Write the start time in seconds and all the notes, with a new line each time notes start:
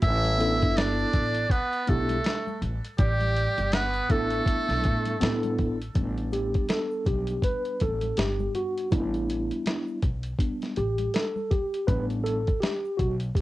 0.02 A1 E4 E5, kick, closed hi-hat, shaker
0.25 closed hi-hat, high conga, shaker
0.39 B3 C#4 E4 A4, closed hi-hat, high conga, shaker
0.46 D4
0.62 G1, kick, closed hi-hat, shaker
0.77 D4 D5, snare, closed hi-hat, shaker
0.98 shaker
1.13 A1, kick, closed hi-hat, low conga, shaker
1.34 closed hi-hat, shaker
1.50 B3 B4, kick, closed hi-hat, shaker
1.73 closed hi-hat, shaker
1.87 B1 A3 B3 D4 E4 G4 A4, kick, closed hi-hat, shaker
2.09 closed hi-hat, high conga, shaker
2.24 snare, closed hi-hat, shaker
2.47 high conga, shaker
2.62 A1, closed hi-hat, low conga, shaker
2.85 closed hi-hat, shaker
2.98 A1 G3 G4, kick, closed hi-hat, shaker
3.21 closed hi-hat, high conga, shaker
3.36 closed hi-hat, high conga, shaker
3.58 G1, closed hi-hat, shaker
3.72 B3 B4, snare, closed hi-hat, low conga, shaker
3.94 closed hi-hat, shaker
4.09 A1 A3 B3 D4 E4 A4, kick, closed hi-hat, low conga, shaker
4.30 closed hi-hat, shaker
4.46 kick, closed hi-hat, high conga, shaker
4.68 B1, snare, closed hi-hat, shaker
4.84 A2, kick, closed hi-hat, shaker
5.05 closed hi-hat, high conga, shaker
5.20 A2 B3 C4 E4 A4, snare, closed hi-hat, shaker
5.28 D4
5.43 closed hi-hat, high conga, shaker
5.58 A1, kick, closed hi-hat, low conga, shaker
5.81 closed hi-hat, shaker
5.94 A1 G3 B3 D4, kick, closed hi-hat, shaker
6.17 closed hi-hat, shaker
6.32 G4, closed hi-hat, high conga, shaker
6.54 kick, closed hi-hat, shaker
6.69 A4, snare, closed hi-hat, low conga, shaker
6.91 shaker
7.05 B1 G4, kick, closed hi-hat, low conga, shaker
7.27 closed hi-hat, shaker
7.42 B4, kick, closed hi-hat, high conga, shaker
7.65 closed hi-hat, shaker
7.80 A1 A4, kick, closed hi-hat, shaker
8.01 closed hi-hat, high conga, shaker
8.17 G1 G4, snare, closed hi-hat, shaker
8.39 high conga, shaker
8.55 F#4, closed hi-hat, low conga, shaker
8.77 closed hi-hat, shaker
8.91 A1 G3 B3 D4 E4, kick, closed hi-hat, shaker
9.14 closed hi-hat, shaker
9.28 closed hi-hat, high conga, shaker
9.51 closed hi-hat, shaker
9.66 snare, closed hi-hat, low conga, shaker
9.87 shaker
10.02 B1, kick, closed hi-hat, low conga, shaker
10.23 closed hi-hat, shaker
10.39 G3 B3 D4, kick, closed hi-hat, high conga, shaker
10.61 snare, closed hi-hat, shaker
10.76 A1 G4, closed hi-hat, shaker
10.98 closed hi-hat, high conga, shaker
11.14 A4, snare, closed hi-hat, shaker
11.36 high conga, shaker
11.51 G4, kick, closed hi-hat, low conga, shaker
11.74 closed hi-hat, shaker
11.87 A1 G3 B3 D4 B4, kick, closed hi-hat, shaker
12.10 closed hi-hat, shaker
12.24 A4, closed hi-hat, high conga, shaker
12.47 kick, closed hi-hat, shaker
12.60 G4, snare, closed hi-hat, low conga, shaker
12.85 shaker
12.97 B1 F#4, kick, closed hi-hat, low conga, shaker
13.20 closed hi-hat, shaker
13.35 G4, kick, closed hi-hat, high conga, shaker